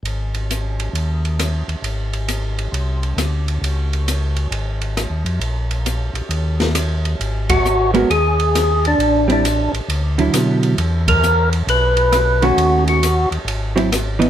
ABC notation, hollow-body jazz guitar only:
X:1
M:4/4
L:1/8
Q:"Swing" 1/4=134
K:G#m
V:1 name="Hollow-body jazz guitar"
z8 | z8 | z8 | z8 |
z3 [G,B,FA] z4 | z [=G,=CE] z3 [=D,F,E]3 | z6 z [D,=A,CF]- | [D,=A,CF]2 z3 [F,^B,E] z [E,=B,D] |]